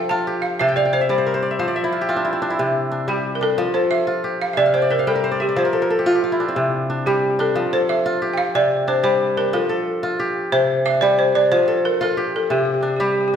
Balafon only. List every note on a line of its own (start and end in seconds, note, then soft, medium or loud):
0.09 0.44 A5 medium
0.42 0.60 F5 medium
0.59 0.77 E5 medium
0.76 0.94 D5 medium
0.93 1.09 C5 medium
1.10 2.05 C5 medium
3.09 3.33 G4 medium
3.35 3.42 A#4 medium
3.43 3.76 A4 medium
3.74 3.92 C5 medium
3.91 4.42 E5 medium
4.42 4.53 F5 medium
4.53 4.73 D5 loud
4.53 4.58 E5 medium
4.74 4.91 C5 medium
4.91 5.08 A#4 medium
5.08 5.38 A4 medium
5.42 5.58 G4 medium
5.59 6.20 C5 medium
7.06 7.40 G4 medium
7.40 7.74 A4 medium
7.73 7.89 C5 medium
7.89 8.36 E5 medium
8.34 8.38 G5 medium
8.38 8.53 F5 loud
8.55 8.89 D5 medium
8.88 9.03 C5 medium
9.04 9.38 C5 medium
9.37 9.54 A#4 medium
9.54 10.16 A4 medium
10.52 10.87 C5 loud
10.86 11.03 E5 loud
11.01 11.19 D5 medium
11.19 11.36 C5 medium
11.35 11.52 D5 medium
11.52 11.86 C5 medium
11.85 12.02 A#4 medium
12.03 12.35 A4 medium
12.36 12.52 A4 medium
12.51 12.57 G4 medium
12.58 12.64 G4 medium
12.65 12.72 G4 medium
12.74 12.80 G4 medium
12.81 12.87 G4 medium
12.88 12.95 G4 soft
12.96 13.02 G4 soft
13.03 13.10 G4 soft
13.12 13.18 G4 soft
13.21 13.26 G4 soft
13.28 13.34 G4 medium